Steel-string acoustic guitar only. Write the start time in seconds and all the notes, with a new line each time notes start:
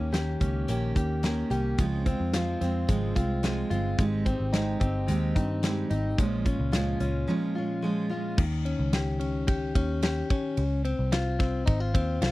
Already playing: A#3 C#4 G4
0.12 D#3 A#3 C#4 G4
0.40 A#3 C#4 G4
0.68 D#3 A#3 C#4 G4
0.95 A#3 C#4 G4
1.23 D#3 A#3 C#4 G4
1.50 A#3 C#4 G4
1.78 C#3 F3 G#3 C4 F4
2.06 G#3 C4 F4
2.33 F3 G#3 C4 F4
2.61 G#3 C4 F4
2.88 C#3 F3 G#3 C4 F4
3.15 G#3 C4 F4
3.43 F3 G#3 C4 F4
3.71 G#3 C4 F4
3.98 G#3 C4 D#4 G4
4.26 C4 D#4 G4
4.53 G#3 C4 D#4 G4
4.80 C4 D#4 G4
5.08 G#3 C4 D#4 G4
5.36 C4 D#4 G4
5.63 G#3 C4 D#4 G4
5.90 C4 D#4 G4
6.18 A#2 F3 G#3 C#4 F4
6.45 G#3 C#4 F4
6.72 F3 G#3 C#4 F4
7.00 G#3 C#4 F4
7.28 A#2 F3 G#3 C#4 F4
7.55 G#3 C#4 F4
7.82 F3 G#3 C#4 F4
8.09 G#3 C#4 F4